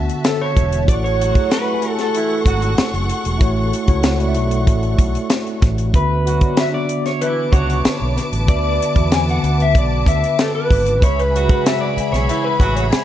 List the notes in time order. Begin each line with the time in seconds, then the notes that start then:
Already playing: D3 B3 F#4 E5 F#5 A5
0.09 closed hi-hat
0.24 A4, snare, closed hi-hat
0.41 C#5
0.57 E1, kick, closed hi-hat
0.72 closed hi-hat
0.85 A1 A3 E4 F#4 D5 F#5 C#6, kick, closed hi-hat
0.89 A4 C#5
1.04 C#5, closed hi-hat
1.19 F#3 F#4, closed hi-hat
1.32 A3 E4 F#4, kick, closed hi-hat
1.36 G#4
1.51 B4, snare, closed hi-hat
1.64 A3 E4 F#4
1.68 G4
1.74 G#5
1.82 closed hi-hat
1.99 A4, snare, closed hi-hat
2.14 E3 E4, closed hi-hat
2.46 G#1 F#3 F#4, kick, closed hi-hat
2.62 closed hi-hat
2.78 muted fingered electric bass stroke, snare, closed hi-hat
2.94 F#1, closed hi-hat
3.09 closed hi-hat
3.25 E1, closed hi-hat
3.38 A1 A3 E4 F#4, kick, closed hi-hat
3.42 C#5
3.73 closed hi-hat
3.85 C#2 A3 E4 F#4 C#5, kick, closed hi-hat
4.03 snare, closed hi-hat
4.18 A3 E4 F#4 D5, closed hi-hat
4.28 E5
4.34 B1, closed hi-hat
4.51 closed hi-hat
4.67 A1, kick, closed hi-hat
4.83 closed hi-hat
4.99 B1, kick, closed hi-hat
5.15 closed hi-hat
5.30 snare, closed hi-hat
5.47 closed hi-hat
5.62 A1, kick, snare, closed hi-hat
5.78 closed hi-hat
5.92 D2 D3 B3 F#4 B4 E5, kick, closed hi-hat
6.26 F#3 F#4, closed hi-hat
6.39 D3 B3 F#4 D5, kick, closed hi-hat
6.57 E5, snare, closed hi-hat
6.71 B3 D4 F#4 D5 E5
6.89 closed hi-hat
7.06 C#5, snare, closed hi-hat
7.21 E3 E4 B4 A5 D6, closed hi-hat
7.52 C#2 F#3 F#4 C#5, kick, closed hi-hat
7.70 closed hi-hat
7.85 muted fingered electric bass stroke, snare, closed hi-hat
8.02 B1
8.17 snare, closed hi-hat
8.32 A1, closed hi-hat
8.46 D2 D3 B3 F#4 D5 E5, kick, closed hi-hat
8.82 closed hi-hat
8.94 E2 D3 B3 F#4 E5, kick, closed hi-hat
9.12 G#5, snare, closed hi-hat
9.26 D3 B3 F#4 F#5, closed hi-hat
9.31 F#5
9.43 D2, closed hi-hat
9.60 E5, closed hi-hat
9.75 B1 D5, kick, closed hi-hat
10.06 D2 E5, kick, closed hi-hat
10.24 closed hi-hat
10.39 A4, snare, closed hi-hat
10.55 B4
10.71 G#1, kick, open hi-hat
10.86 closed hi-hat
11.00 C#2 C#3 G#3 G#4 B4 C#5 E5 B5, kick, closed hi-hat
11.19 B4, closed hi-hat
11.33 F#3 F#4, closed hi-hat
11.47 C#3 G#3 B4 F#5, kick, closed hi-hat
11.51 B4
11.66 E5, snare, closed hi-hat
11.78 C#3 G#3 B4 D5 E5
11.97 muted fingered electric bass stroke, closed hi-hat
12.12 B1 C#5, snare, closed hi-hat
12.28 E3 E4, closed hi-hat
12.45 B4
12.60 A1 F#3 F#4, kick, closed hi-hat
12.76 C#5, closed hi-hat
12.90 G#4, muted fingered electric bass stroke, snare, closed hi-hat